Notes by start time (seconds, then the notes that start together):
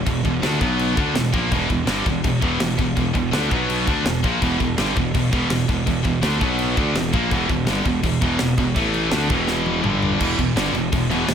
0.06 E1 E2 B2, kick, crash
0.25 E1 E2 B2, kick, crash
0.42 D2 D3 A3 D4, snare, crash
0.61 B1 B2 F#3 B3, kick, crash
0.79 crash
0.97 D2 D3 A3 D4, kick, crash
1.15 E1 E2 B2, snare, crash
1.32 A#1 A#2 F3 A#3, kick, crash
1.50 E1 E2 B2 E3, kick, crash
1.69 E1 E2 B2, kick, crash
1.87 G1 G2 D3 G3, snare, crash
2.05 E1 E2 B2, kick, crash
2.24 E1 E2 B2, kick, crash
2.41 E1 E2 B2 E3, kick, crash
2.60 E1 E2 B2, snare, crash
2.78 E1 E2 B2, kick, crash
2.96 E1 E2 B2, kick, crash
3.13 E1 E2 B2, kick, crash
3.31 D2 D3 A3 D4, snare, crash
3.50 B1 B2 F#3 B3, kick, crash
3.70 crash
3.86 D2 D3 A3 D4, kick, crash
4.04 E1 E2 B2, snare, crash
4.23 A#1 A#2 F3 A#3, kick, crash
4.41 E1 E2 B2 E3, kick, crash
4.59 E1 E2 B2, kick, crash
4.78 G1 G2 D3 G3, snare, crash
4.96 E1 E2 B2, kick, crash
5.15 E1 E2 B2, kick, crash
5.32 E1 E2 B2 E3, kick, crash
5.50 E1 E2 B2, snare, crash
5.68 E1 E2 B2, kick, crash
5.86 E1 E2 B2, kick, crash
6.03 E1 E2 B2, kick, crash
6.22 D2 D3 A3 D4, snare, crash
6.39 B1 B2 F#3 B3, kick, crash
6.59 crash
6.76 D2 D3 A3 D4, kick, crash
6.94 E1 E2 B2, snare, crash
7.13 A#1 A#2 F3 A#3, kick, crash
7.30 E1 E2 B2 E3, kick, crash
7.49 E1 E2 B2, kick, crash
7.66 G1 G2 D3 G3, snare, crash
7.85 E1 E2 B2, kick, crash
8.03 E1 E2 B2, kick, crash
8.21 E1 E2 B2 E3, kick, crash
8.39 E1 E2 B2, snare, crash
8.58 E1 E2 B2, kick, crash
8.76 A1 A2 E3 A3, kick, crash
8.94 crash
9.12 D2 D3 A3 D4, snare, crash
9.30 E1 E2 B2 E3, kick, crash
9.48 snare
9.66 high tom
9.84 G1 G2 D3 G3, mid tom
10.03 floor tom
10.20 E1 E2 B2 E3, kick, crash
10.39 E1 E2 B2, kick, crash
10.56 G1 G2 D3 G3, snare, crash
10.74 E1 E2 B2, crash
10.92 E1 E2 B2, kick, crash
11.10 E1 E2 B2 E3, crash
11.28 E1 E2 B2, snare, crash